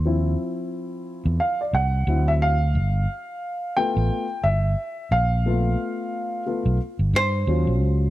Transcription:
X:1
M:4/4
L:1/16
Q:"Swing 16ths" 1/4=89
K:Gmix
V:1 name="Hollow-body jazz guitar"
z16 | z16 | z8 z2 c6 |]
V:2 name="Grand piano"
z8 f d ^f3 e =f2- | f6 g4 e4 f2- | f8 z8 |]
V:3 name="Grand piano"
[F,CE]12 [^F,CE]2 z2 | z6 [A,B,F]2 z8 | [A,B,F]6 [A,B,F]2 z4 [_G,_DF]4 |]
V:4 name="Fretless electric bass" clef=bass
_E,,2 z4 z =E,, z2 C,,2 D,,4 | G,,,2 z4 z A,,, z2 G,,,2 z2 _B,,,2- | _B,,,2 z4 z =B,,, z G,,, G,,2 _E,, _B,,, _D,,2 |]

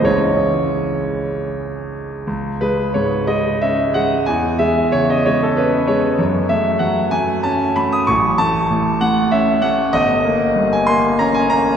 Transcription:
X:1
M:3/4
L:1/16
Q:1/4=94
K:C#m
V:1 name="Grand piano"
c8 z4 | z2 B2 c2 d2 e2 f2 | g2 e2 c d c A B2 c2 | z2 e2 f2 g2 a2 b d' |
c'2 a4 f2 e2 f2 | d4- d g ^b2 ^a g a2 |]
V:2 name="Grand piano" clef=bass
[C,,E,G,C]12 | C,,2 G,2 G,,2 G,2 C2 G,2 | E,,2 G,2 C,2 G,2 C2 G,2 | F,,2 A,2 F,2 A,2 C2 A,2 |
A,,,2 A,2 A,,2 A,2 C2 A,2 | =G,,,2 ^A,2 =G,,2 A,2 C2 A,2 |]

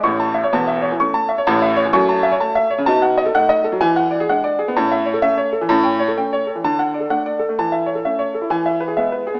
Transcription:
X:1
M:4/4
L:1/16
Q:"Swing" 1/4=128
K:Alyd
V:1 name="Upright piano"
c' a e c a e c E, c' a e c a e c E, | [K:A] c' a e c a e c C, a f ^d A f d A F, | g f d G f d G B, a e c A e c A E, | a =g c A g c A E, a f d A f d A A, |
a e c A e c A E g e B G e B G B, |]
V:2 name="Upright piano"
[A,,,A,,]4 [E,,,E,,]4 [A,C]4 [A,,,A,,]4 | [K:A] [F,,A,]4 A,4 [B,,^D]4 [A,D]4 | E,4 [G,D]4 [A,,C]4 [A,C]4 | [A,,C]4 [A,C]4 D,4 [A,D]4 |
E,4 [A,C]4 E,4 [G,B,]4 |]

